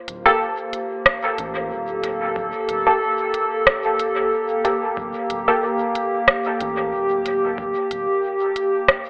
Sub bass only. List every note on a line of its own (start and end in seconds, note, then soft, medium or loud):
0.08 0.24 D1 medium
1.38 1.72 A1 medium
1.71 2.33 D1 medium
2.36 2.52 D1 loud
2.69 2.85 D1 medium
4.97 5.13 D1 loud
5.30 5.46 D1 medium
6.60 6.94 A1 medium
6.93 7.55 D1 medium
7.58 7.74 D1 loud
7.91 8.06 D1 medium